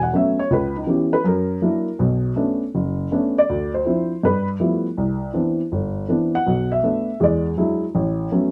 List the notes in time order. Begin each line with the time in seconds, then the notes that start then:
0.03 F#5
0.13 F#3 A3 B3 C#4 E5
0.39 C#5
0.50 C#2 B4
0.76 D#4
0.87 E3 B3 C#4 G4
1.13 B4
1.25 F#2 A#4
1.62 F#3 A#3 D4 E4
1.99 B1 B2
2.36 A3 B3 C#4 D4
2.75 F#1
3.11 A3 B3 C#4 D4
3.38 D5
3.49 D2
3.74 C5
3.85 F3 C4 D4 E4
4.23 G2 B4
4.60 F3 G3 A3 B3 E4
4.97 C2
5.34 E3 B3 C4 D4
5.72 G1
6.09 E3 B3 C4 D4
6.35 F#5
6.46 B1 B2
6.72 E5
6.83 A3 B3 D4
7.20 E2 G#3 D5
7.57 F#3 G#3 D4 E4
7.95 A1
8.32 F#3 A3 B3 C#4